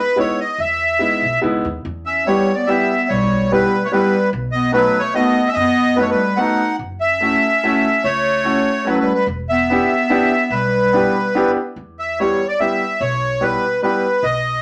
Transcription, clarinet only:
2.05 C#4
2.26 G3
2.55 B3
2.68 B3
3.09 G3
3.51 G3
3.85 A3
3.92 G3
4.54 B3
4.75 F#3
5.02 A3
5.18 B3
5.50 C#4
5.59 B3
6.00 F#3 A3
6.12 G3
6.40 D#4
7.04 C#4
8.05 A3
8.87 F#3
9.02 G3
9.15 G3
9.51 B3
10.51 G3

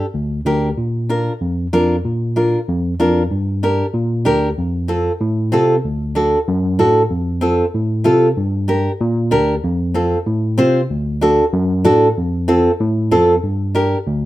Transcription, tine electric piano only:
0.14 D2
0.45 D2
0.78 A#2
1.41 F2
1.73 F2
2.04 A#2
2.68 F2
3.00 F2
3.31 G2
3.94 A#2
4.26 D2
4.58 F2
5.21 A2
5.53 C3
5.85 D2
6.48 F#2
6.79 A2
7.11 F2
7.74 A2
8.06 C3
8.37 G2
9.01 A#2
9.32 D2
9.64 F2
10.26 A2
10.58 C3
10.90 D2
11.53 F#2
11.85 A2
12.17 F2
12.80 A2
13.12 F2
13.43 G2
14.07 D2

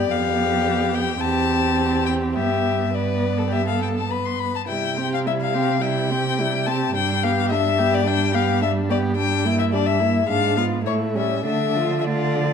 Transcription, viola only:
Already playing: B3
0.12 B3
1.21 C4
2.36 B3
2.93 B3
4.69 G3
4.98 C4
5.26 G3
5.55 C4
5.83 G3
6.11 C4
6.39 G3
6.68 C4
6.96 G3
7.24 B3
7.52 G3
7.80 B3
8.07 G3
8.35 B3
8.63 G3
8.90 B3
9.18 G3
9.45 A#3
9.72 G3
10.01 A#3
10.28 G#3
10.56 B3
10.85 A3
11.15 G3
11.45 A3
11.76 F3
12.07 A3
12.37 F3

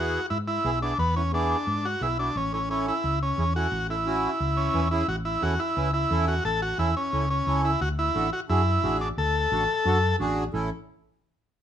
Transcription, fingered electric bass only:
Already playing: E2
0.31 G#2
0.65 B1
0.98 E2
1.67 G#2
2.01 B1
2.36 A1
3.04 C#2
3.38 E2
3.72 A1
4.40 C#2
4.74 E2
5.08 A1
5.42 E2
5.77 C#2
6.11 E2
6.45 A1
6.78 E2
7.13 C#2
7.47 C#2
7.81 D2
8.16 A1
8.50 F#2
8.84 A1
9.18 D2
9.52 A1
9.85 F#2
10.20 A1
10.54 A1

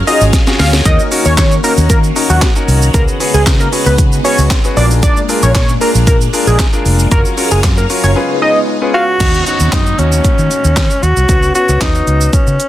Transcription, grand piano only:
0.07 C#4 F4 F#4 G#4
0.47 C#4 F4 F#4 G#4
0.85 C#4 D#4 F#4 A#4
1.11 C#4 D#4 F#4 A#4
1.63 C#4 D#4 F#4 A#4
2.16 C#4 D#4 F#4 A#4
2.56 C#4 D#4 F#4 A#4
2.94 C#4 F#4 G#4 B4
3.20 C#4 F#4 G#4 B4
3.72 C#4 F#4 G#4 B4
4.24 C#4 F#4 G#4 B4
4.64 C#4 F#4 G#4 B4
4.76 D4 F4 G#4 A#4
5.29 D4 F4 G#4 A#4
5.81 D4 F4 G#4 A#4
6.33 D4 F4 G#4 A#4
6.73 D4 F4 G#4 A#4
7.11 C#4 F4 F#4 A#4
7.37 C#4 F4 F#4 A#4
7.89 C#4 F4 F#4 A#4
8.15 C#4 F4 G#4 B4
8.42 C#4 F4 G#4 B4
8.81 C#4 F4 G#4 B4
9.20 C#4 D#4 F#4
9.46 C#4 D#4 F#4
9.98 C#4 D#4 F#4
11.29 B3 C#4 F#4
11.55 B3 C#4 F#4
11.69 B3 C#4 F#4

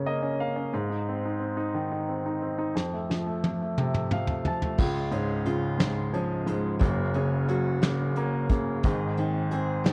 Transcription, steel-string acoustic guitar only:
4.78 G#3 F4
5.12 C#4
5.46 F4
5.80 G#3
6.14 C#4
6.47 G#3
6.80 A#3 F#4
7.14 C#4
7.48 F#4
7.81 A#3
8.16 C#4
8.50 A#3
8.83 D#3 G#4
9.17 C4
9.51 G#4
9.84 G#3

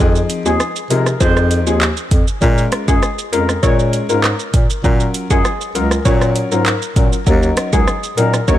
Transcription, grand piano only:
0.00 F3 C4 D#4 G#4
0.45 F3 C4 D#4 G#4
0.90 F3 C4 D#4 G#4
1.20 F3 C4 D#4 G#4
1.67 F3 C4 D#4 G#4
2.41 G#3 C#4 F4 A#4
2.88 G#3 C#4 F4 A#4
3.33 G#3 C#4 F4 A#4
3.63 G#3 C#4 F4 A#4
4.09 G#3 C#4 F4 A#4
4.84 F#3 C#4 F4 A#4
5.30 F#3 C#4 F4 A#4
5.75 F#3 C#4 F4 A#4
6.05 F#3 C#4 F4 A#4
6.52 F#3 C#4 F4 A#4
6.96 F#3 C#4 F4 A#4
7.26 F#3 C#4 D#4 A#4
7.73 F#3 C#4 D#4 A#4
8.17 F#3 C#4 D#4 A#4
8.48 F#3 C#4 D#4 A#4

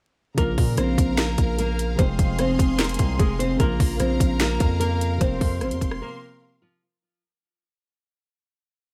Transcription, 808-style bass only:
0.38 A#1
0.58 A#2
0.78 A#1
0.98 A#1
1.38 A#1
1.99 F1
2.19 F1
2.59 F1
2.99 C2
3.19 F1
3.60 A#1
3.80 A#1
4.00 A#1
4.20 A#1
4.60 F2
5.21 F1
5.41 F2
5.61 G#1
5.71 F2
5.81 F1

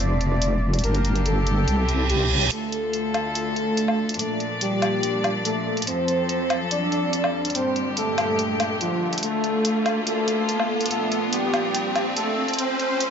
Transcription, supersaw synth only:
0.00 D5
0.84 A#4
1.26 A4
2.10 G4
2.52 A3 A4
3.35 A3 A4
4.19 A3 A4
4.61 G3 G4
5.45 A3 A4
5.87 C4 C5
6.71 D4 D5
7.55 C4 C5
7.97 A3 A4
8.81 F3 F4
9.23 A3 A4
10.07 A3 A4
10.91 A3 A4
11.33 G3 G4
12.17 A3 A4
12.58 C4 C5

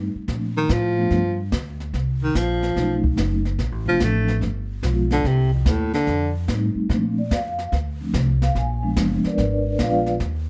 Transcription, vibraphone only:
0.29 F3 A3 C4 D4
0.98 F3 A3 B3 D4
2.77 F#3 A3 C#4 D#4
3.87 F3 A3 C4 D4
4.84 F3 G#3 B3 F4
6.49 G3 A3 C4 D#4
6.90 F3 A3 C4 D4
7.18 D5
7.33 F5
8.01 F3 A3 C4 D4
8.43 F5
8.58 G#5
8.83 F3 G#3 B3 D4
9.27 D4 A#4 B4 D5
9.79 F3 G#3 B3 D4 D5 F5
9.83 F4 B4

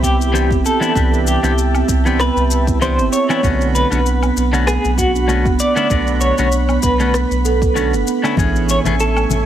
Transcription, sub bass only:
Already playing: C2
0.51 G1
0.96 C2
1.43 C2
1.88 C2
2.36 C2
2.98 G1
3.43 B1
3.91 B1
4.37 B1
4.85 B1
5.45 F#1
5.90 B1
6.38 B1
6.83 B1
7.31 B1
7.93 F#1
8.37 A1
8.85 A1
9.31 A1

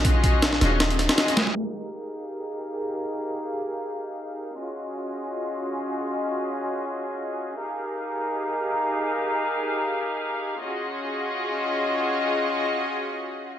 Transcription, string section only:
0.05 C#4 F4 F#4 G#4 D#5
0.61 C#4 F4 F#4 G#4 D#5
1.09 C#4 F4 F#4 G#4 D#5
1.56 D#4 G4 G#4 A#4 F5
4.58 C#4 F4 F#4 G#4 D#5
7.59 D#4 G4 G#4 A#4 F5
10.61 C#4 F4 F#4 G#4 D#5

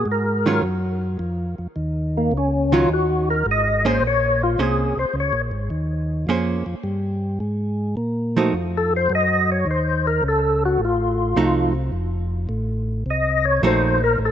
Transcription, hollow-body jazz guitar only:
0.46 D#3 F#3 C#4 F4
2.72 D#3 F#3 C#4 F4
3.85 A#3 C#4 G#4 C5
4.59 A#3 C#4 G#4 C5
6.29 A#3 C#4 G#4 C5
8.37 F3 A3 D#4 F#4
11.36 F3 A3 D#4 F#4
13.63 F3 A3 D#4 F#4

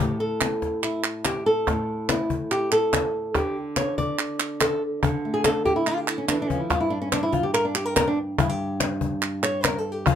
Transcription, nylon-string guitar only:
0.00 A2 G4
0.20 A4
0.84 E4
1.25 G4
1.46 A4
1.68 A2
2.10 E4
2.51 G4
2.72 A4
3.35 D3 G4
3.77 C#5
3.98 D5
4.61 A4
5.03 D3
5.25 A3
5.34 G#4
5.45 A4
5.65 G4
5.76 E4
5.87 F4
5.97 G4
6.08 E4
6.18 C#4
6.28 E3 D4
6.35 E4
6.42 D4
6.48 F3 C#4
6.59 E4
6.70 G2 F4
6.80 E4
6.90 D4
7.02 C#4
7.12 D4
7.23 E4
7.32 F4
7.43 G4
7.54 A#4
7.65 D4
7.75 G4
7.85 A#4
7.96 A#4
8.07 D4
8.39 G2 E4
8.49 G4
9.43 C#5
9.64 A#4
9.78 A4
9.92 G4
10.07 F3 F4

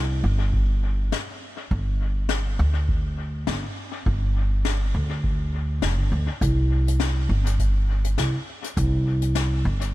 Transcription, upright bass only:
Already playing: C2
0.24 G1
1.71 G1
2.59 D2
3.47 G1
4.06 G1
4.95 D2
5.83 F1
5.99 G1
6.12 D2
6.41 C2
7.29 G1
8.18 C2
8.77 C2
9.65 G1

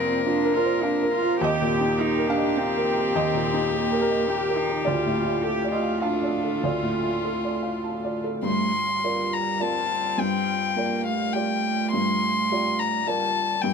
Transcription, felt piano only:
Already playing: F2 C3 D5
0.08 C4
0.26 F4
0.45 A#4
0.57 A#4
0.64 C5
0.83 F5
1.03 A#4
1.22 F4
1.41 D#2 D#5
1.62 A#2
1.81 D#4
1.99 G4
2.18 A#4
2.30 F5
2.37 D#5
2.58 G5
2.78 A#4
2.96 G4
3.15 D#2 D#5
3.34 A#2
3.54 D#4
3.74 G4
3.93 A#4
4.01 A#4
4.10 D#5
4.30 G5
4.49 A#4
4.68 G4
4.85 D2 D5
5.06 A2
5.25 F4
5.44 A4
5.64 D5
5.72 D#5
5.82 F5
6.02 F5 A5
6.23 D5
6.44 A4
6.63 D2 D5
6.83 A2
7.04 F4
7.24 A4
7.45 D5
7.63 F5
7.84 A5
8.04 D5
8.24 A4
8.42 G2
9.04 F4 A#4 D5
9.60 F4 A#4 D5
10.18 G2
10.77 F4 A#4 D5
11.35 F4 G4 D5
11.93 G2
12.52 F4 G4 D5
13.07 F4 A#4 D5
13.63 G2

